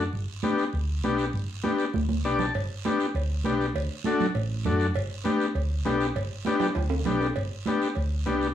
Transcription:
0.13 0.25 G1 medium
0.13 high conga soft
0.13 long guiro medium
0.42 0.65 B3 medium
0.42 0.65 D4 medium
0.42 0.65 G4 medium
0.42 high conga medium
0.42 short guiro medium
0.58 short guiro medium
0.73 1.03 D2 medium
0.73 high conga soft
0.73 long guiro medium
1.03 1.28 B1 medium
1.03 1.25 B3 medium
1.03 1.25 D4 medium
1.03 1.25 G4 medium
1.03 high conga medium
1.03 short guiro medium
1.18 short guiro medium
1.33 1.46 G1 loud
1.33 high conga soft
1.33 long guiro medium
1.63 1.85 B3 medium
1.63 1.85 D4 medium
1.63 1.85 G4 medium
1.63 high conga medium
1.63 short guiro medium
1.79 short guiro medium
1.94 2.25 D2 medium
1.94 high conga medium
1.94 long guiro medium
2.09 high conga medium
2.24 2.49 B1 medium
2.24 2.46 B3 medium
2.24 2.46 D4 medium
2.24 2.46 G4 medium
2.24 2.39 D5 medium
2.24 short guiro medium
2.39 2.53 A5 medium
2.39 low conga medium
2.39 short guiro medium
2.55 2.67 G1 medium
2.55 cowbell loud
2.55 high conga soft
2.55 long guiro medium
2.85 3.06 B3 medium
2.85 3.06 D4 medium
2.85 3.06 G4 medium
2.85 cowbell medium
2.85 high conga medium
2.85 short guiro medium
3.00 short guiro medium
3.14 3.45 D2 medium
3.14 cowbell medium
3.14 high conga soft
3.14 long guiro medium
3.44 3.69 B1 medium
3.44 3.66 B3 medium
3.44 3.66 D4 medium
3.44 3.66 G4 medium
3.44 cowbell medium
3.44 high conga medium
3.44 short guiro medium
3.61 short guiro medium
3.74 3.87 D2 medium
3.74 cowbell loud
3.74 high conga soft
3.74 long guiro medium
4.04 4.26 A3 medium
4.04 4.27 D4 medium
4.04 4.27 F#4 medium
4.04 cowbell medium
4.04 high conga medium
4.04 short guiro medium
4.20 low conga medium
4.20 short guiro medium
4.35 4.67 A1 loud
4.35 cowbell medium
4.35 high conga soft
4.35 long guiro medium
4.64 4.89 F#2 medium
4.64 4.87 A3 medium
4.64 4.87 D4 medium
4.64 4.87 F#4 medium
4.64 cowbell medium
4.64 high conga medium
4.64 low conga medium
4.64 short guiro medium
4.80 short guiro medium
4.94 5.08 G1 loud
4.94 cowbell loud
4.94 high conga soft
4.94 long guiro medium
5.24 5.46 B3 medium
5.24 5.46 D4 medium
5.24 5.47 G4 medium
5.24 cowbell medium
5.24 high conga medium
5.24 short guiro medium
5.40 short guiro medium
5.55 5.85 D2 medium
5.55 cowbell medium
5.55 high conga soft
5.55 long guiro medium
5.85 6.09 B1 medium
5.85 6.07 B3 medium
5.85 6.07 D4 medium
5.85 6.07 G4 medium
5.85 cowbell medium
5.85 high conga medium
5.85 low timbale medium
5.85 short guiro medium
6.01 short guiro medium
6.16 6.28 G1 loud
6.16 cowbell loud
6.16 high conga soft
6.16 long guiro medium
6.45 6.67 B3 medium
6.45 6.67 D4 medium
6.45 6.67 G4 medium
6.45 cowbell medium
6.45 high conga medium
6.45 short guiro medium
6.60 low conga medium
6.60 high timbale medium
6.60 short guiro medium
6.75 7.05 D2 loud
6.75 cowbell medium
6.75 high conga soft
6.75 high timbale medium
6.75 long guiro medium
6.90 low timbale loud
7.05 7.30 B1 loud
7.05 7.27 B3 medium
7.05 7.27 D4 medium
7.05 7.27 G4 medium
7.05 cowbell medium
7.05 high conga medium
7.05 low conga medium
7.05 short guiro medium
7.21 low timbale medium
7.21 short guiro medium
7.35 7.48 G1 medium
7.35 cowbell loud
7.35 high conga soft
7.35 long guiro medium
7.66 7.88 B3 medium
7.66 7.88 D4 medium
7.66 7.88 G4 medium
7.66 cowbell medium
7.66 high conga medium
7.66 short guiro medium
7.82 short guiro medium
7.95 8.26 D2 medium
7.95 cowbell medium
7.95 high conga soft
7.95 long guiro medium
8.26 8.51 C2 medium
8.26 8.47 B3 medium
8.26 8.48 D4 medium
8.26 8.48 G4 medium
8.26 cowbell medium
8.26 high conga medium
8.26 short guiro medium
8.41 short guiro medium

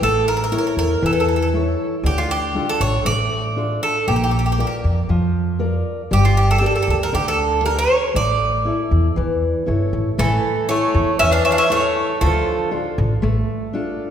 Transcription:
0.01 0.54 A1 medium
0.01 0.51 A3 medium
0.01 0.26 A4 medium
0.28 0.35 A#4 medium
0.37 0.43 A#4 medium
0.44 0.51 A#4 medium
0.52 0.92 E4 soft
0.52 0.93 A4 soft
0.52 0.57 A#4 medium
0.52 0.93 C#5 soft
0.58 0.65 A#4 medium
0.67 0.73 A#4 medium
0.77 0.95 E2 medium
0.77 1.04 A#4 medium
1.02 1.74 E2 medium
1.02 1.52 E3 medium
1.02 1.11 A4 medium
1.13 1.19 A4 soft
1.20 1.26 A4 medium
1.28 1.34 A4 soft
1.36 1.41 A4 soft
1.42 1.49 A4 soft
1.54 1.94 E4 soft
1.54 1.95 A4 soft
1.54 1.95 C#5 soft
2.03 2.57 D2 medium
2.03 2.54 D3 medium
2.03 2.18 G4 medium
2.18 2.31 F4 medium
2.31 2.70 G4 medium
2.55 2.96 D4 soft
2.55 2.96 F4 soft
2.55 2.96 A4 medium
2.69 2.81 A4 medium
2.80 2.98 A1 medium
2.80 3.04 C#5 medium
3.05 3.77 A1 medium
3.05 3.55 A3 medium
3.05 3.83 D5 medium
3.56 3.97 D4 soft
3.56 3.98 F4 soft
3.56 3.98 A4 soft
3.83 4.06 A4 medium
4.08 4.61 A#1 medium
4.08 4.57 A#3 medium
4.08 4.15 G4 medium
4.16 4.22 G4 soft
4.24 4.30 G4 medium
4.31 4.38 G4 soft
4.39 4.45 G4 soft
4.46 4.51 G4 soft
4.52 4.59 G4 medium
4.58 4.99 F4 soft
4.58 4.66 G4 soft
4.58 4.99 A#4 soft
4.58 5.00 D5 soft
4.67 4.75 G4 soft
4.84 5.02 F2 medium
5.09 5.80 F2 medium
5.09 5.59 F3 medium
5.59 6.00 F4 soft
5.59 6.01 A#4 soft
5.59 6.01 D5 soft
6.11 6.65 G1 medium
6.11 6.60 G3 medium
6.11 6.24 G4 medium
6.25 6.38 F4 medium
6.37 6.49 G4 medium
6.51 6.57 A4 medium
6.58 7.02 G4 soft
6.58 6.65 A4 medium
6.58 7.02 A#4 soft
6.58 7.03 D5 medium
6.66 6.72 A4 medium
6.76 6.81 A4 medium
6.82 6.88 A4 medium
6.88 7.06 D2 medium
6.88 6.96 A4 medium
7.03 7.14 A#4 medium
7.12 7.85 D2 medium
7.12 7.62 D3 medium
7.12 7.27 G4 medium
7.28 7.63 A4 medium
7.63 8.05 D4 soft
7.63 8.04 G4 soft
7.63 8.04 A#4 soft
7.63 7.77 A#4 medium
7.79 8.16 C#5 medium
8.14 8.69 A1 medium
8.14 8.64 A3 medium
8.14 9.64 D5 medium
8.65 9.06 E4 soft
8.65 9.06 A4 soft
8.65 9.07 E5 medium
8.91 9.09 E2 medium
9.16 9.53 E2 medium
9.16 9.66 E3 medium
9.66 9.91 G1 medium
9.66 10.08 E4 soft
9.66 10.08 A4 soft
9.66 10.08 C#5 soft
9.93 10.16 A1 medium
10.18 10.36 A1 medium
10.18 10.66 E3 medium
10.18 10.68 A3 medium
10.18 10.66 A4 medium
10.69 11.17 A3 medium
10.69 11.10 E4 soft
10.69 11.10 A4 soft
10.69 11.16 C#5 medium
10.69 11.10 C#5 medium
10.94 11.12 E2 medium
11.19 11.38 E2 medium
11.19 11.69 E3 medium
11.19 11.32 C#4 medium
11.19 11.32 E5 loud
11.31 11.44 D4 medium
11.31 11.44 F5 medium
11.45 11.51 C#4 medium
11.45 11.51 E5 medium
11.51 11.57 D4 medium
11.51 11.58 F5 medium
11.58 11.70 C#4 medium
11.58 11.71 E5 medium
11.70 12.18 A3 medium
11.70 12.11 E4 soft
11.70 12.11 A4 soft
11.70 12.12 C#5 medium
11.70 12.19 C#5 medium
12.21 12.39 D2 loud
12.21 12.71 D3 medium
12.21 12.69 F3 medium
12.21 12.69 A4 medium
12.71 13.12 D4 medium
12.71 13.13 F4 soft
12.71 13.13 A4 medium
12.98 13.16 A1 medium
13.22 13.41 A1 medium
13.22 13.72 A3 medium
13.73 14.10 D4 soft
13.73 14.10 F4 soft
13.73 14.10 A4 medium

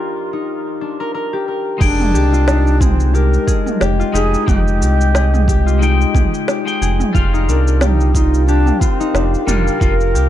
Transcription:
0.00 0.46 F3 medium
0.00 0.48 F3 medium
0.00 0.47 A#3 medium
0.00 0.39 D4 medium
0.00 0.48 F4 medium
0.00 0.48 F4 loud
0.00 0.48 F4 medium
0.00 0.48 G4 medium
0.00 1.33 G4 medium
0.00 0.48 A#4 medium
0.00 1.00 A#4 medium
0.00 0.47 D#5 medium
0.00 0.47 F5 medium
0.00 0.48 G5 medium
0.33 0.87 D#4 medium
0.81 2.53 D4 medium
1.00 1.14 A#4 medium
1.14 1.48 A#4 medium
1.33 1.87 G4 medium
1.48 3.60 A#4 medium
1.78 2.15 F1 loud
1.78 4.09 G#3 medium
1.78 4.10 D#4 medium
1.78 1.86 D#4 loud
1.78 2.20 G#4 loud
1.78 4.11 G5 medium
1.78 kick loud
1.78 crash loud
1.82 2.82 D4 loud
1.82 shaker soft
2.00 mid tom medium
2.00 shaker soft
2.14 3.38 C2 medium
2.14 2.86 G4 loud
2.14 shaker medium
2.18 10.29 F4 medium
2.33 3.99 F4 medium
2.33 shaker soft
2.47 4.14 D#4 medium
2.47 snare loud
2.47 shaker soft
2.56 7.15 G#3 medium
2.67 shaker soft
2.80 3.16 C4 loud
2.80 3.20 G#4 medium
2.80 kick loud
2.80 mid tom medium
2.80 shaker medium
2.85 7.14 D#5 loud
3.00 shaker soft
3.14 3.53 G4 medium
3.14 3.81 A#4 medium
3.14 shaker soft
3.34 shaker soft
3.47 3.86 G#4 loud
3.47 10.29 G5 medium
3.47 kick loud
3.47 shaker medium
3.66 mid tom medium
3.66 shaker soft
3.80 4.03 F1 medium
3.80 4.53 G4 loud
3.80 snare loud
3.80 shaker soft
3.99 5.66 F4 loud
3.99 shaker soft
4.12 4.36 F1 loud
4.12 4.43 G#3 medium
4.12 4.44 D#4 medium
4.12 5.81 D#4 medium
4.12 4.44 G4 loud
4.12 4.49 G#4 loud
4.12 shaker medium
4.34 shaker soft
4.46 4.83 F1 medium
4.46 4.60 G#3 medium
4.46 7.19 G#3 medium
4.46 4.60 D#4 medium
4.46 5.81 G4 loud
4.46 4.61 G4 medium
4.46 kick loud
4.46 mid tom medium
4.46 shaker soft
4.68 shaker soft
4.81 6.05 C2 medium
4.81 5.20 G4 medium
4.81 shaker medium
5.01 shaker soft
5.14 5.54 G#4 medium
5.14 snare loud
5.14 shaker soft
5.34 mid tom medium
5.34 shaker soft
5.48 6.21 G4 loud
5.48 kick loud
5.48 shaker medium
5.66 7.14 F4 loud
5.66 shaker soft
5.79 6.62 G#3 medium
5.79 6.63 D#4 medium
5.79 7.33 D#4 medium
5.79 shaker soft
5.83 6.64 G5 loud
6.01 shaker soft
6.15 6.26 C2 medium
6.15 6.54 G#4 medium
6.15 kick loud
6.15 mid tom medium
6.15 shaker medium
6.34 shaker soft
6.48 6.88 G4 medium
6.48 snare loud
6.48 shaker soft
6.65 7.10 G#3 medium
6.65 7.11 D#4 medium
6.65 7.11 G5 medium
6.65 shaker soft
6.82 7.03 F1 loud
6.82 7.88 G#4 loud
6.82 shaker medium
7.00 mid tom medium
7.00 shaker soft
7.13 7.49 F1 loud
7.13 9.43 G3 medium
7.13 8.15 F4 medium
7.13 9.45 F4 loud
7.13 9.44 F5 medium
7.13 kick loud
7.13 shaker soft
7.34 7.54 D#4 loud
7.34 shaker soft
7.48 8.72 C2 medium
7.48 9.06 D4 medium
7.48 7.82 A#4 medium
7.48 shaker medium
7.57 10.29 F5 loud
7.63 10.29 A#4 medium
7.68 shaker soft
7.80 8.13 D#4 loud
7.80 7.85 F4 loud
7.80 8.48 G4 medium
7.80 snare loud
7.80 mid tom medium
7.80 shaker soft
8.01 shaker soft
8.14 8.45 D#4 loud
8.14 8.81 F4 medium
8.14 kick loud
8.14 shaker medium
8.34 shaker soft
8.46 8.81 D4 loud
8.46 9.48 G4 loud
8.46 shaker soft
8.66 mid tom medium
8.66 shaker soft
8.80 9.45 C4 loud
8.80 9.81 F4 loud
8.80 kick loud
8.80 shaker medium
9.00 9.21 D#4 loud
9.00 shaker soft
9.14 9.36 F1 medium
9.14 10.29 D4 medium
9.14 snare loud
9.14 shaker soft
9.34 shaker soft
9.46 9.69 F1 loud
9.46 9.77 G3 medium
9.46 9.78 D4 medium
9.46 9.78 F4 loud
9.46 10.14 G4 medium
9.46 10.29 A#4 medium
9.46 mid tom medium
9.46 shaker medium
9.68 shaker soft
9.80 10.16 F1 medium
9.80 9.93 G3 medium
9.80 9.94 D4 medium
9.80 10.29 F4 medium
9.80 9.94 F4 loud
9.80 kick loud
9.80 shaker soft
10.01 shaker soft
10.15 10.29 C2 medium
10.15 10.29 G4 loud
10.15 shaker medium

